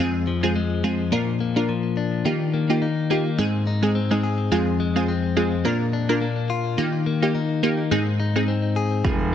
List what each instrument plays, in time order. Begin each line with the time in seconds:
0.00 clean electric guitar F2, synth stab G#3 C4 F4 G#4
0.27 clean electric guitar F3
0.43 synth stab G#3 C4 F4 G#4
0.56 clean electric guitar G#3
0.84 clean electric guitar F3, synth stab G#3 C4 F4 G#4
1.12 clean electric guitar A#2, synth stab A#3 D4 F4 A#4
1.40 clean electric guitar A#3
1.56 synth stab A#3 D4 F4 A#4
1.69 clean electric guitar F3
1.97 clean electric guitar D4
2.25 clean electric guitar D#3, synth stab A#3 D#4 F4 G4
2.54 clean electric guitar A#3
2.70 synth stab A#3 D#4 F4 G4
2.82 clean electric guitar D#4
3.10 clean electric guitar A#3, synth stab A#3 D#4 F4 G4
3.38 clean electric guitar G#2, synth stab G#3 C4 D#4 G#4
3.67 clean electric guitar D#4
3.82 synth stab G#3 C4 D#4 G#4
3.95 clean electric guitar C4
4.11 synth stab G#3 C4 D#4 G#4
4.23 clean electric guitar G#4
4.52 clean electric guitar F2, synth stab G#3 C4 F4 G#4
4.80 clean electric guitar G#3
4.96 synth stab G#3 C4 F4 G#4
5.08 clean electric guitar C4
5.37 synth stab G#3 C4 F4 G#4, clean electric guitar G#3
5.65 clean electric guitar A#2, synth stab A#3 D4 F4 A#4
5.93 clean electric guitar D4
6.09 synth stab A#3 D4 F4 A#4
6.21 clean electric guitar A#3
6.50 clean electric guitar F4
6.78 clean electric guitar D#3, synth stab A#3 D#4 F4 G4
7.06 clean electric guitar A#3
7.22 synth stab A#3 D#4 F4 G4
7.35 clean electric guitar D#4
7.63 clean electric guitar A#3, synth stab A#3 D#4 F4 G4
7.91 clean electric guitar G#2, synth stab G#3 C4 D#4 G#4
8.20 clean electric guitar D#4
8.36 synth stab G#3 C4 D#4 G#4
8.48 clean electric guitar C4
8.76 clean electric guitar G#4
9.05 grand piano F1, synth stab G#3 C4 F4 G#4, kick